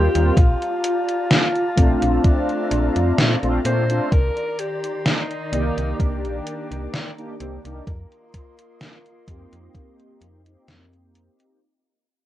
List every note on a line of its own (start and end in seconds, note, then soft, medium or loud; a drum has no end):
0.00 4.08 F4 medium
0.00 0.39 G4 loud
0.00 0.33 D#5 medium
0.00 0.33 G5 medium
0.00 0.33 C6 medium
0.14 0.31 D#2 medium
0.14 0.34 G3 medium
0.14 0.34 A#3 medium
0.14 0.34 C4 medium
0.14 0.35 F4 loud
0.14 closed hi-hat medium
0.37 0.55 A#1 medium
0.37 2.25 F4 loud
0.37 7.83 D5 medium
0.37 4.08 A5 medium
0.37 11.58 A#5 medium
0.37 kick loud
0.37 closed hi-hat soft
0.62 closed hi-hat soft
0.84 closed hi-hat medium
1.09 closed hi-hat soft
1.31 snare loud
1.31 closed hi-hat soft
1.55 closed hi-hat soft
1.75 1.96 A#1 loud
1.75 3.36 A3 medium
1.75 3.37 C4 medium
1.75 3.37 D4 medium
1.75 3.37 F4 loud
1.75 kick loud
1.75 closed hi-hat medium
2.02 2.19 A#1 medium
2.02 closed hi-hat soft
2.24 3.36 D4 medium
2.24 kick loud
2.24 closed hi-hat soft
2.49 closed hi-hat soft
2.71 2.89 A#1 medium
2.71 closed hi-hat medium
2.96 3.12 F2 medium
2.96 closed hi-hat soft
3.18 3.36 A#2 medium
3.18 snare loud
3.18 closed hi-hat soft
3.42 3.59 A#1 medium
3.42 3.59 A3 loud
3.42 3.60 C4 medium
3.42 3.60 D4 medium
3.42 3.60 F4 loud
3.42 closed hi-hat soft
3.64 4.00 A#2 loud
3.64 3.83 A3 medium
3.64 3.84 C4 medium
3.64 3.84 D4 medium
3.64 3.84 F4 loud
3.64 4.14 C5 loud
3.64 closed hi-hat medium
3.89 4.09 A3 medium
3.89 4.09 C4 medium
3.89 4.09 D4 medium
3.89 4.10 F4 loud
3.89 closed hi-hat medium
4.12 4.30 C2 loud
4.12 7.83 D#3 medium
4.12 4.61 A#4 loud
4.12 5.98 C6 medium
4.12 kick loud
4.12 closed hi-hat soft
4.37 closed hi-hat soft
4.59 5.08 G4 loud
4.59 closed hi-hat medium
4.84 closed hi-hat soft
5.06 6.02 D#4 loud
5.06 snare loud
5.06 closed hi-hat medium
5.31 closed hi-hat soft
5.51 5.71 C2 loud
5.51 7.12 D#3 medium
5.51 7.11 A#3 medium
5.51 7.13 G4 loud
5.51 7.12 D5 medium
5.51 closed hi-hat medium
5.77 5.94 C2 medium
5.77 closed hi-hat medium
6.00 6.26 C2 medium
6.00 7.41 D4 loud
6.00 7.85 D6 medium
6.00 kick loud
6.00 closed hi-hat soft
6.24 6.41 A#1 medium
6.24 closed hi-hat soft
6.47 closed hi-hat medium
6.71 6.87 C2 medium
6.71 closed hi-hat soft
6.94 snare loud
6.94 closed hi-hat medium
7.17 7.35 A#3 medium
7.17 7.35 D4 medium
7.17 7.35 D#4 medium
7.17 7.35 G4 loud
7.17 closed hi-hat soft
7.40 7.58 C2 medium
7.40 7.59 A#3 medium
7.40 7.57 C4 medium
7.40 7.59 D4 medium
7.40 7.59 D#4 medium
7.40 7.60 G4 loud
7.40 closed hi-hat medium
7.64 7.81 C2 medium
7.64 7.84 A#3 medium
7.64 7.84 D4 medium
7.64 7.85 D#4 medium
7.64 7.85 G4 loud
7.64 closed hi-hat soft
7.87 8.05 F2 loud
7.87 10.65 A#3 medium
7.87 11.58 F4 medium
7.87 11.58 D#5 medium
7.87 11.58 C6 medium
7.87 kick loud
7.87 closed hi-hat medium
8.12 closed hi-hat soft
8.34 kick medium
8.34 closed hi-hat medium
8.59 closed hi-hat medium
8.81 snare loud
8.81 closed hi-hat medium
9.06 closed hi-hat soft
9.26 9.46 F2 loud
9.26 10.41 A#3 medium
9.26 10.41 C4 medium
9.26 10.42 D#4 medium
9.26 10.42 G4 loud
9.26 kick loud
9.26 closed hi-hat medium
9.52 9.69 F2 medium
9.52 closed hi-hat medium
9.75 kick loud
9.75 closed hi-hat medium
10.00 closed hi-hat soft
10.21 10.56 F2 medium
10.21 closed hi-hat medium
10.45 11.59 A#3 medium
10.45 11.59 C4 medium
10.45 11.60 D#4 medium
10.45 11.60 G4 medium
10.45 closed hi-hat medium
10.68 11.29 F2 medium
10.68 snare loud
10.68 closed hi-hat medium
10.93 closed hi-hat soft
11.15 closed hi-hat medium
11.40 closed hi-hat medium